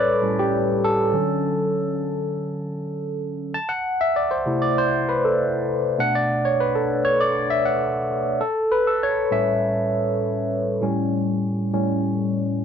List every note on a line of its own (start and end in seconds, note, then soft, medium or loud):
0.00 0.21 A2 medium
0.00 0.21 G3 soft
0.00 0.21 C#4 medium
0.00 0.84 A4 medium
0.00 0.40 B4 medium
0.00 1.15 C#5 medium
0.00 1.16 D5 loud
0.22 0.49 A2 medium
0.22 0.50 G3 soft
0.22 0.50 C#4 soft
0.39 0.85 G4 medium
0.84 1.41 A4 medium
1.12 3.51 D3 medium
1.12 3.52 F#3 soft
1.12 3.52 C#4 medium
3.54 3.71 A5 loud
3.69 4.01 F#5 loud
4.01 4.17 E5 medium
4.16 4.23 D5 medium
4.31 4.63 C5 medium
4.46 4.87 C3 medium
4.46 4.87 A3 soft
4.46 4.87 E4 medium
4.62 4.78 D5 medium
4.78 5.09 C5 medium
5.09 5.15 B4 medium
5.25 5.52 A4 medium
5.98 6.39 B2 medium
5.98 6.39 A3 soft
5.98 6.39 D4 medium
5.98 6.15 F#5 loud
6.15 6.46 D5 medium
6.45 6.60 C#5 medium
6.60 6.67 B4 medium
6.75 7.06 A4 medium
7.05 7.19 C#5 loud
7.21 7.48 D5 loud
7.50 7.66 E5 loud
7.65 7.93 F#5 medium
8.41 8.72 A4 medium
8.72 8.87 B4 medium
8.87 9.02 A4 medium
9.03 9.33 C#5 medium
9.31 10.18 A2 medium
9.31 10.18 G3 soft
9.31 10.18 C#4 medium
9.31 10.19 E5 medium
10.82 11.69 A2 medium
10.82 11.69 G3 medium
10.82 11.69 C#4 medium
11.73 12.00 A2 soft
11.73 12.00 G3 soft
11.73 12.01 C#4 medium